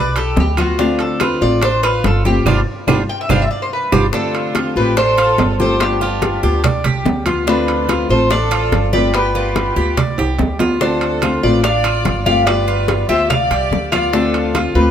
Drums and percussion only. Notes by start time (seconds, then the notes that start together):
0.16 high conga, high timbale
0.36 high bongo, low bongo, high conga, low timbale
0.57 high bongo, high conga, high timbale, claves
0.79 high bongo, high conga
0.99 high bongo, high conga, high timbale
1.20 high bongo, high conga, high timbale, claves
1.41 high bongo, high conga
1.62 high bongo, high conga, high timbale
1.83 high conga, high timbale, claves
2.04 high bongo, low bongo, high conga, high timbale
2.25 high bongo, high conga
2.46 low bongo, low conga, high timbale, claves
2.88 low bongo, low conga, high timbale, claves
3.29 low bongo, low conga, high timbale, claves
3.92 low bongo, low conga, high timbale, claves
4.13 high bongo, high conga
4.34 high bongo, high conga, high timbale
4.55 high bongo, high conga, high timbale
4.76 high bongo, high conga
4.97 high bongo, high conga, high timbale
5.18 high conga, high timbale
5.38 high bongo, low bongo, high conga, high timbale, low timbale
5.60 high bongo, high conga
5.80 high bongo, high conga, high timbale
6.01 high bongo, high conga
6.22 high bongo, high conga, high timbale
6.43 high bongo, high conga
6.64 high bongo, high conga, low conga, high timbale
6.84 high conga, low conga, high timbale
7.05 high bongo, low bongo, high conga, low timbale
7.26 high bongo, high conga, high timbale
7.48 high bongo, high conga
7.68 high bongo, high conga, high timbale
7.89 high bongo, high conga, high timbale
8.10 high bongo, high conga
8.31 high bongo, high conga, high timbale
8.51 high conga, high timbale
8.72 high bongo, low bongo, high conga, high timbale
8.93 high bongo, high conga
9.14 high bongo, high conga, high timbale
9.35 high bongo, high conga
9.56 high bongo, high conga, high timbale
9.77 high bongo, high conga
9.97 high bongo, high conga, low conga, high timbale
10.18 high conga, high timbale
10.39 high bongo, low bongo, high conga, low timbale
10.59 high bongo, high conga, low timbale
10.81 high bongo, high conga
11.01 high bongo, high conga, high timbale
11.22 high bongo, high conga, high timbale, claves
11.43 high bongo, high conga
11.64 high bongo, high conga, high timbale
11.84 high conga, high timbale, claves
12.05 high bongo, low bongo, high conga, high timbale
12.26 high bongo, high conga
12.47 high bongo, high conga, high timbale, claves
12.68 high bongo, high conga
12.88 high bongo, high conga, high timbale
13.09 high bongo, high conga
13.30 high bongo, high conga, low conga, high timbale, claves
13.51 high conga, high timbale
13.72 high bongo, low bongo, high conga
13.92 high bongo, high conga, high timbale, claves
14.14 high bongo, high conga
14.34 high bongo, high conga, high timbale
14.55 high bongo, high conga, high timbale, claves
14.75 high bongo, high conga